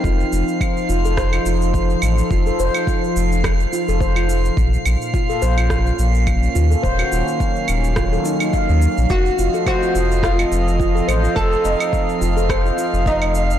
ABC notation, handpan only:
X:1
M:4/4
L:1/16
Q:"Swing 16ths" 1/4=106
K:none
V:1 name="Handpan"
F z4 z F A c F F z4 z | F A c F F z4 z F A c F F z | z4 F A c F F z4 z F A | c _G F z4 z F A _E E f z3 |
z2 F A c F F z4 z F A c F | F z4 z F A c F F z4 z |]